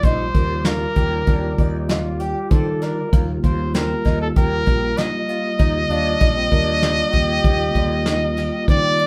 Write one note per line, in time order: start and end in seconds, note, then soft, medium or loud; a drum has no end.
0.00 0.29 A#1 medium
0.00 3.08 G3 medium
0.00 3.09 F4 medium
0.00 3.09 D5 medium
0.00 kick loud
0.00 closed hi-hat medium
0.04 0.22 D#4 medium
0.04 0.67 C5 medium
0.34 0.84 D#2 medium
0.34 0.52 A#4 medium
0.34 kick medium
0.34 closed hi-hat medium
0.65 0.83 F4 medium
0.65 1.89 A#4 medium
0.65 snare loud
0.65 closed hi-hat medium
0.96 1.21 D#2 medium
0.96 1.13 G4 medium
0.96 kick medium
0.96 closed hi-hat medium
1.27 1.52 D#2 medium
1.27 1.60 D4 medium
1.27 1.44 G4 medium
1.27 kick medium
1.27 closed hi-hat medium
1.58 2.33 D#2 medium
1.58 1.91 D#4 medium
1.58 1.76 D5 medium
1.58 kick medium
1.58 closed hi-hat medium
1.89 2.06 D#4 medium
1.89 2.21 F4 medium
1.89 snare loud
1.89 closed hi-hat medium
2.20 2.37 G4 medium
2.20 2.52 G4 medium
2.20 closed hi-hat medium
2.51 3.01 D#3 medium
2.51 2.68 C4 medium
2.51 2.84 A4 loud
2.51 kick loud
2.51 closed hi-hat medium
2.82 2.99 D4 medium
2.82 3.29 A#4 loud
2.82 snare soft
2.82 closed hi-hat medium
3.12 3.38 D#2 loud
3.12 9.07 G3 medium
3.12 9.07 A#3 medium
3.12 3.30 A#3 medium
3.12 9.07 F4 medium
3.12 kick loud
3.12 closed hi-hat medium
3.44 3.93 D#2 medium
3.44 3.61 A#3 medium
3.44 3.76 C5 medium
3.44 kick medium
3.44 closed hi-hat medium
3.74 3.92 C4 medium
3.74 4.20 A#4 loud
3.74 snare medium
3.74 closed hi-hat medium
4.05 4.30 D#2 medium
4.05 4.22 D#4 medium
4.05 kick medium
4.05 snare soft
4.05 closed hi-hat medium
4.21 4.28 A4 medium
4.36 4.61 D#2 medium
4.36 4.53 G4 medium
4.36 4.99 A#4 loud
4.36 kick medium
4.36 closed hi-hat medium
4.66 4.92 A#1 loud
4.66 4.84 G4 medium
4.66 kick medium
4.66 closed hi-hat medium
4.97 5.15 D#4 medium
4.97 8.68 D#5 loud
4.97 snare loud
4.97 closed hi-hat medium
5.29 5.46 F4 medium
5.29 closed hi-hat medium
5.59 5.84 D#2 medium
5.59 5.76 D#4 medium
5.59 5.73 D#4 medium
5.59 kick loud
5.59 snare soft
5.59 closed hi-hat medium
5.89 6.14 D#2 medium
5.89 6.38 D4 medium
5.89 6.08 F4 medium
5.89 closed hi-hat medium
6.21 6.46 A#1 medium
6.21 6.38 D#4 medium
6.21 kick loud
6.21 closed hi-hat medium
6.36 6.50 C4 medium
6.51 7.01 D#2 medium
6.51 7.14 D4 medium
6.51 6.69 A#4 medium
6.51 kick medium
6.51 closed hi-hat medium
6.82 6.99 F4 medium
6.82 snare loud
6.82 closed hi-hat medium
7.12 7.38 D#2 medium
7.12 8.36 G4 loud
7.12 7.30 G4 medium
7.12 kick medium
7.12 closed hi-hat medium
7.44 7.69 D#2 loud
7.44 7.62 G4 medium
7.44 kick medium
7.44 closed hi-hat medium
7.75 8.49 D#2 medium
7.75 7.93 D3 medium
7.75 kick medium
7.75 closed hi-hat medium
8.06 8.24 D#4 medium
8.06 snare loud
8.06 closed hi-hat medium
8.37 8.55 G4 medium
8.37 snare soft
8.37 closed hi-hat medium
8.68 9.07 D#3 medium
8.68 8.86 C4 medium
8.68 9.07 D5 loud
8.68 kick loud
8.68 closed hi-hat medium
8.99 9.07 D4 medium
8.99 closed hi-hat medium